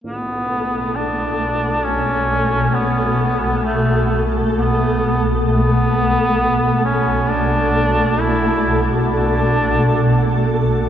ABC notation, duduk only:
X:1
M:4/4
L:1/8
Q:1/4=66
K:Bm
V:1 name="Duduk"
B,2 D2 C2 B,2 | A, z B,2 B,3 C | D2 E z D3 z |]